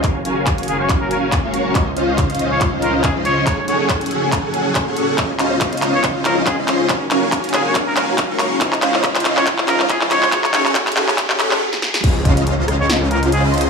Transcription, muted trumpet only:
X:1
M:4/4
L:1/16
Q:"Swing 16ths" 1/4=140
K:Db
V:1 name="Muted trumpet"
z6 A d z B B z4 z | z6 z d z2 B z A z d2 | d d d d z12 | z6 z d z2 B z A z3 |
z6 A d z B B z4 z | z6 z d z2 B z A z d2 | d d d d z12 | z6 z d z2 B z A z3 |]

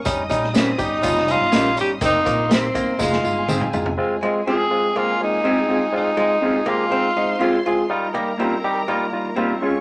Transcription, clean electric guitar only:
X:1
M:4/4
L:1/16
Q:1/4=122
K:Fm
V:1 name="Clean electric guitar"
z4 [DGB] z6 z [DGB] z3 | z4 [EGB] z6 z [EAc] z3 | z4 [CFA] z6 z [CFA] z [CFA]2 | z4 [CFA] z6 z [CFA] z3 |
z4 [B,FG] z6 z [B,FG] z [DFA]2 |]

